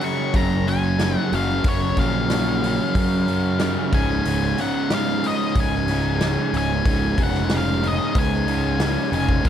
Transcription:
0.01 F#2 C#3 F#3 C#6, open hi-hat
0.34 F#1 F#2 C#3 F#3 A#5, kick, open hi-hat
0.68 F#2 C#3 F#3 G#5, open hi-hat
0.99 F#2 C#3 F#3, snare, open hi-hat
1.18 F#5
1.33 F#1 F#2 C#3 F#3 F5, open hi-hat
1.64 F#1 F#2 C#3 F#3 C#5, kick, open hi-hat
1.97 A#1 F#2 C#3 F#3 F5, kick, open hi-hat
2.30 F#2 C#3 F#3, snare, open hi-hat
2.64 F#2 C#3 F#3, open hi-hat
2.95 F#2 C#3 F#3, kick, open hi-hat
3.27 F#2 C#3 F#3, open hi-hat
3.59 F#2 C#3 F#3, snare, open hi-hat
3.93 C#1 C#2 G#2 C#3 G#5, kick, open hi-hat
4.25 C#1 C#2 G#2 C#3, open hi-hat
4.58 C#2 G#2 C#3 F#5, open hi-hat
4.90 C#2 G#2 C#3, snare, open hi-hat
4.94 F5
5.22 C#2 G#2 C#3, open hi-hat
5.27 D#5
5.55 C#1 C#2 G#2 C#3, kick, open hi-hat
5.60 G#5
5.88 C#2 G#2 C#3, snare, open hi-hat
6.21 C#2 G#2 C#3, snare, open hi-hat
6.53 C#1 C#2 G#2 C#3, open hi-hat
6.58 G#5
6.85 C#1 C#2 G#2 C#3, kick, open hi-hat
7.18 F1 C#2 G#2 C#3, kick, open hi-hat
7.23 F#5
7.34 snare
7.50 C#2 G#2 C#3, snare, open hi-hat
7.57 F5
7.82 C#2 G#2 C#3, open hi-hat
7.88 D#5
8.14 C#2 G#2 C#3, kick, open hi-hat
8.18 G#5
8.47 C#2 G#2 C#3, open hi-hat
8.78 C#2 G#2 C#3, snare, open hi-hat
9.11 F1 C#2 G#2 C#3 G#5, open hi-hat
9.29 kick
9.43 A#1 A#2 F3 A#3, kick, open hi-hat

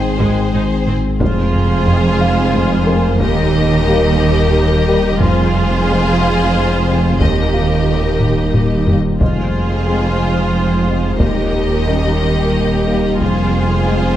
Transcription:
Already playing: G#1 D#3 G#3 C4 D#4 G#4 C5 G5
0.20 G#1 G#2 G#3, taiko
0.53 G#1 G#2 D#4
0.87 G#1 G#2 C4, taiko low-mid
1.20 F1 F2 G#3 C4 F4 G#4 C5, taiko
1.54 taiko low
1.86 G#3 C4, taiko low
2.21 F5
2.54 taiko low
2.87 G#3 C4 A#4
3.20 D#1 D#2 G3 A#3 D#4 G4 A#4 D#5, taiko
3.87 G3 A#3
4.88 G3 A#3
5.20 F1 F2 G#3 C4 F4 G#4 C5, taiko
5.86 G#3 C4
6.21 F5
6.87 G#3 C4
7.20 D#1 D#2 G3 A#3 D#4 G4 A#4 D#5, taiko
7.54 F4 F5
7.89 G3 A#3
8.21 taiko low-mid
8.54 taiko low-mid
8.87 G3 A#3, taiko low
9.19 F1 F2 G#3 C4 F4 G#4 C5 D#5, taiko
9.87 G#3 C4
10.86 G#3 C4
11.19 D#1 D#2 G3 A#3 D#4 G4 A#4 D#5, taiko
11.87 G3 A#3 C#4 D#5
12.87 G3 A#3
13.20 F1 F2 G#3 F4 G#4 C5, taiko
13.87 G#3 C4

